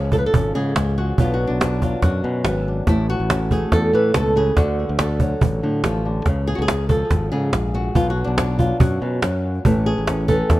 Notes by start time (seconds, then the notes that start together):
Already playing: C#2 C#3 F3 C#4 G#4
0.12 F3 A4, cajon bass
0.18 B4
0.26 A4
0.34 G#1 C#4, cajon bass
0.55 G#2 C#3 G#4
0.76 C#2, cajon slap
0.98 F#4
1.18 B1 B2 F#3 B3 D4 F4, cajon bass
1.34 F#4
1.40 cajon slap
1.47 B1 D4
1.61 D4, cajon slap
1.82 F#3 F4, cajon bass
2.02 F#2 F#4, cajon bass, cajon slap
2.24 F#2 B2
2.45 G#1 B3, cajon slap
2.68 D4
2.87 A1 A2 E4, cajon bass, cajon slap
3.09 F#4, cajon slap
3.20 A1
3.30 C#4, cajon slap
3.51 A3 G#4, cajon bass
3.72 E2 A4, cajon bass, cajon slap
3.93 A2 E3 B4
4.14 C#2 B2 A4, cajon slap
4.36 C#3 G#4
4.57 D2 D3 F#4, cajon bass, cajon slap
4.78 cajon slap
4.89 D2
4.99 A4, cajon slap
5.20 F#3, cajon bass
5.41 A1, cajon bass
5.63 A2 D3
5.84 A1 F3, cajon slap
6.05 D3
6.26 C#2 C#3, cajon bass, cajon slap
6.47 G#4
6.55 C#2 F#4
6.62 G#4
6.68 cajon slap
6.89 F3 A4, cajon bass
7.11 G#1, cajon bass, cajon slap
7.32 G#2 C#3 G#4
7.53 A#1, cajon slap
7.74 F#4
7.95 B1 B2 F4, cajon bass
8.10 F#4
8.24 B1 D4
8.38 D4, cajon slap
8.59 F#3 F4, cajon bass
8.80 F#2 F#4, cajon bass
9.02 F#2 B2
9.22 F#2, cajon slap
9.65 A1 A2 E3 A3 C#4, cajon bass
9.86 G#4
9.98 A1
10.07 C#4, cajon slap
10.28 E3 A4, cajon bass
10.50 E2, cajon bass, cajon slap